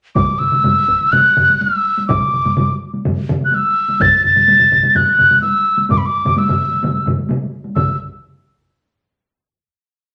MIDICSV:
0, 0, Header, 1, 3, 480
1, 0, Start_track
1, 0, Tempo, 479233
1, 156, Time_signature, 4, 2, 24, 8
1, 5435, Tempo, 467290
1, 7835, Tempo, 457317
1, 10336, End_track
2, 0, Start_track
2, 0, Title_t, "Piccolo"
2, 0, Program_c, 0, 72
2, 154, Note_on_c, 0, 86, 70
2, 389, Note_on_c, 0, 88, 81
2, 404, Note_off_c, 0, 86, 0
2, 1124, Note_on_c, 0, 90, 74
2, 1139, Note_off_c, 0, 88, 0
2, 1617, Note_on_c, 0, 88, 76
2, 1632, Note_off_c, 0, 90, 0
2, 2078, Note_off_c, 0, 88, 0
2, 2084, Note_on_c, 0, 86, 67
2, 2770, Note_off_c, 0, 86, 0
2, 3455, Note_on_c, 0, 90, 55
2, 3552, Note_on_c, 0, 88, 79
2, 3567, Note_off_c, 0, 90, 0
2, 4020, Note_on_c, 0, 93, 86
2, 4035, Note_off_c, 0, 88, 0
2, 4254, Note_off_c, 0, 93, 0
2, 4265, Note_on_c, 0, 93, 88
2, 4966, Note_on_c, 0, 90, 73
2, 4981, Note_off_c, 0, 93, 0
2, 5418, Note_off_c, 0, 90, 0
2, 5424, Note_on_c, 0, 88, 82
2, 5880, Note_off_c, 0, 88, 0
2, 5927, Note_on_c, 0, 86, 72
2, 5999, Note_on_c, 0, 83, 61
2, 6014, Note_off_c, 0, 86, 0
2, 6083, Note_on_c, 0, 86, 75
2, 6099, Note_off_c, 0, 83, 0
2, 6418, Note_on_c, 0, 88, 63
2, 6433, Note_off_c, 0, 86, 0
2, 7130, Note_off_c, 0, 88, 0
2, 7827, Note_on_c, 0, 88, 61
2, 8057, Note_off_c, 0, 88, 0
2, 10336, End_track
3, 0, Start_track
3, 0, Title_t, "Taiko and cinematic ensemble drums"
3, 153, Note_on_c, 9, 48, 70
3, 157, Note_on_c, 9, 47, 83
3, 159, Note_on_c, 9, 41, 88
3, 159, Note_on_c, 9, 45, 83
3, 253, Note_off_c, 9, 48, 0
3, 257, Note_off_c, 9, 47, 0
3, 259, Note_off_c, 9, 45, 0
3, 260, Note_off_c, 9, 41, 0
3, 401, Note_on_c, 9, 47, 61
3, 406, Note_on_c, 9, 45, 62
3, 501, Note_off_c, 9, 47, 0
3, 507, Note_off_c, 9, 45, 0
3, 521, Note_on_c, 9, 47, 62
3, 522, Note_on_c, 9, 48, 50
3, 528, Note_on_c, 9, 45, 65
3, 621, Note_off_c, 9, 47, 0
3, 622, Note_off_c, 9, 48, 0
3, 628, Note_off_c, 9, 45, 0
3, 642, Note_on_c, 9, 47, 80
3, 643, Note_on_c, 9, 48, 68
3, 653, Note_on_c, 9, 45, 78
3, 742, Note_off_c, 9, 47, 0
3, 744, Note_off_c, 9, 48, 0
3, 753, Note_off_c, 9, 45, 0
3, 886, Note_on_c, 9, 41, 70
3, 986, Note_off_c, 9, 41, 0
3, 1012, Note_on_c, 9, 48, 47
3, 1112, Note_off_c, 9, 48, 0
3, 1126, Note_on_c, 9, 45, 84
3, 1130, Note_on_c, 9, 47, 81
3, 1132, Note_on_c, 9, 48, 65
3, 1226, Note_off_c, 9, 45, 0
3, 1230, Note_off_c, 9, 47, 0
3, 1232, Note_off_c, 9, 48, 0
3, 1369, Note_on_c, 9, 47, 90
3, 1373, Note_on_c, 9, 45, 84
3, 1470, Note_off_c, 9, 47, 0
3, 1473, Note_off_c, 9, 45, 0
3, 1498, Note_on_c, 9, 48, 51
3, 1598, Note_off_c, 9, 48, 0
3, 1612, Note_on_c, 9, 48, 59
3, 1712, Note_off_c, 9, 48, 0
3, 1978, Note_on_c, 9, 48, 53
3, 2078, Note_off_c, 9, 48, 0
3, 2092, Note_on_c, 9, 47, 86
3, 2094, Note_on_c, 9, 41, 99
3, 2094, Note_on_c, 9, 45, 80
3, 2098, Note_on_c, 9, 48, 58
3, 2192, Note_off_c, 9, 47, 0
3, 2194, Note_off_c, 9, 45, 0
3, 2195, Note_off_c, 9, 41, 0
3, 2198, Note_off_c, 9, 48, 0
3, 2335, Note_on_c, 9, 45, 56
3, 2339, Note_on_c, 9, 47, 57
3, 2435, Note_off_c, 9, 45, 0
3, 2439, Note_off_c, 9, 47, 0
3, 2453, Note_on_c, 9, 45, 61
3, 2458, Note_on_c, 9, 47, 61
3, 2461, Note_on_c, 9, 48, 54
3, 2553, Note_off_c, 9, 45, 0
3, 2558, Note_off_c, 9, 47, 0
3, 2561, Note_off_c, 9, 48, 0
3, 2572, Note_on_c, 9, 47, 89
3, 2575, Note_on_c, 9, 45, 85
3, 2580, Note_on_c, 9, 48, 59
3, 2672, Note_off_c, 9, 47, 0
3, 2675, Note_off_c, 9, 45, 0
3, 2680, Note_off_c, 9, 48, 0
3, 2941, Note_on_c, 9, 48, 49
3, 3041, Note_off_c, 9, 48, 0
3, 3057, Note_on_c, 9, 47, 90
3, 3058, Note_on_c, 9, 45, 94
3, 3058, Note_on_c, 9, 48, 62
3, 3158, Note_off_c, 9, 45, 0
3, 3158, Note_off_c, 9, 47, 0
3, 3158, Note_off_c, 9, 48, 0
3, 3298, Note_on_c, 9, 45, 94
3, 3298, Note_on_c, 9, 47, 96
3, 3398, Note_off_c, 9, 45, 0
3, 3398, Note_off_c, 9, 47, 0
3, 3411, Note_on_c, 9, 48, 53
3, 3512, Note_off_c, 9, 48, 0
3, 3531, Note_on_c, 9, 48, 57
3, 3631, Note_off_c, 9, 48, 0
3, 3891, Note_on_c, 9, 48, 54
3, 3991, Note_off_c, 9, 48, 0
3, 4005, Note_on_c, 9, 48, 60
3, 4010, Note_on_c, 9, 45, 95
3, 4013, Note_on_c, 9, 41, 96
3, 4014, Note_on_c, 9, 47, 87
3, 4105, Note_off_c, 9, 48, 0
3, 4110, Note_off_c, 9, 45, 0
3, 4114, Note_off_c, 9, 41, 0
3, 4114, Note_off_c, 9, 47, 0
3, 4250, Note_on_c, 9, 47, 53
3, 4257, Note_on_c, 9, 45, 62
3, 4351, Note_off_c, 9, 47, 0
3, 4357, Note_off_c, 9, 45, 0
3, 4362, Note_on_c, 9, 48, 52
3, 4368, Note_on_c, 9, 47, 61
3, 4372, Note_on_c, 9, 45, 59
3, 4462, Note_off_c, 9, 48, 0
3, 4468, Note_off_c, 9, 47, 0
3, 4472, Note_off_c, 9, 45, 0
3, 4485, Note_on_c, 9, 48, 66
3, 4491, Note_on_c, 9, 47, 65
3, 4493, Note_on_c, 9, 45, 62
3, 4585, Note_off_c, 9, 48, 0
3, 4592, Note_off_c, 9, 47, 0
3, 4594, Note_off_c, 9, 45, 0
3, 4602, Note_on_c, 9, 47, 66
3, 4613, Note_on_c, 9, 45, 58
3, 4702, Note_off_c, 9, 47, 0
3, 4713, Note_off_c, 9, 45, 0
3, 4727, Note_on_c, 9, 47, 68
3, 4729, Note_on_c, 9, 41, 64
3, 4733, Note_on_c, 9, 45, 53
3, 4828, Note_off_c, 9, 47, 0
3, 4829, Note_off_c, 9, 41, 0
3, 4833, Note_off_c, 9, 45, 0
3, 4841, Note_on_c, 9, 47, 66
3, 4843, Note_on_c, 9, 48, 54
3, 4844, Note_on_c, 9, 45, 66
3, 4941, Note_off_c, 9, 47, 0
3, 4943, Note_off_c, 9, 48, 0
3, 4944, Note_off_c, 9, 45, 0
3, 4957, Note_on_c, 9, 48, 67
3, 4962, Note_on_c, 9, 45, 91
3, 4965, Note_on_c, 9, 47, 81
3, 5057, Note_off_c, 9, 48, 0
3, 5062, Note_off_c, 9, 45, 0
3, 5065, Note_off_c, 9, 47, 0
3, 5197, Note_on_c, 9, 47, 70
3, 5198, Note_on_c, 9, 45, 61
3, 5297, Note_off_c, 9, 47, 0
3, 5298, Note_off_c, 9, 45, 0
3, 5317, Note_on_c, 9, 48, 56
3, 5320, Note_on_c, 9, 45, 62
3, 5320, Note_on_c, 9, 47, 67
3, 5417, Note_off_c, 9, 48, 0
3, 5420, Note_off_c, 9, 45, 0
3, 5420, Note_off_c, 9, 47, 0
3, 5431, Note_on_c, 9, 48, 68
3, 5533, Note_off_c, 9, 48, 0
3, 5793, Note_on_c, 9, 48, 54
3, 5896, Note_off_c, 9, 48, 0
3, 5911, Note_on_c, 9, 48, 67
3, 5921, Note_on_c, 9, 45, 90
3, 5927, Note_on_c, 9, 47, 81
3, 5931, Note_on_c, 9, 41, 80
3, 6014, Note_off_c, 9, 48, 0
3, 6024, Note_off_c, 9, 45, 0
3, 6030, Note_off_c, 9, 47, 0
3, 6034, Note_off_c, 9, 41, 0
3, 6282, Note_on_c, 9, 48, 49
3, 6283, Note_on_c, 9, 45, 81
3, 6290, Note_on_c, 9, 47, 91
3, 6385, Note_off_c, 9, 48, 0
3, 6386, Note_off_c, 9, 45, 0
3, 6392, Note_off_c, 9, 47, 0
3, 6399, Note_on_c, 9, 48, 73
3, 6502, Note_off_c, 9, 48, 0
3, 6522, Note_on_c, 9, 45, 81
3, 6531, Note_on_c, 9, 47, 90
3, 6624, Note_off_c, 9, 45, 0
3, 6634, Note_off_c, 9, 47, 0
3, 6757, Note_on_c, 9, 48, 56
3, 6860, Note_off_c, 9, 48, 0
3, 6878, Note_on_c, 9, 45, 85
3, 6884, Note_on_c, 9, 48, 71
3, 6885, Note_on_c, 9, 47, 85
3, 6981, Note_off_c, 9, 45, 0
3, 6987, Note_off_c, 9, 48, 0
3, 6988, Note_off_c, 9, 47, 0
3, 7112, Note_on_c, 9, 45, 84
3, 7120, Note_on_c, 9, 48, 49
3, 7127, Note_on_c, 9, 47, 88
3, 7214, Note_off_c, 9, 45, 0
3, 7223, Note_off_c, 9, 48, 0
3, 7230, Note_off_c, 9, 47, 0
3, 7237, Note_on_c, 9, 48, 50
3, 7340, Note_off_c, 9, 48, 0
3, 7353, Note_on_c, 9, 48, 62
3, 7356, Note_on_c, 9, 45, 83
3, 7366, Note_on_c, 9, 47, 87
3, 7455, Note_off_c, 9, 48, 0
3, 7459, Note_off_c, 9, 45, 0
3, 7469, Note_off_c, 9, 47, 0
3, 7713, Note_on_c, 9, 48, 50
3, 7815, Note_off_c, 9, 48, 0
3, 7828, Note_on_c, 9, 45, 84
3, 7832, Note_on_c, 9, 48, 63
3, 7837, Note_on_c, 9, 41, 70
3, 7837, Note_on_c, 9, 47, 88
3, 7933, Note_off_c, 9, 45, 0
3, 7937, Note_off_c, 9, 48, 0
3, 7941, Note_off_c, 9, 47, 0
3, 7942, Note_off_c, 9, 41, 0
3, 10336, End_track
0, 0, End_of_file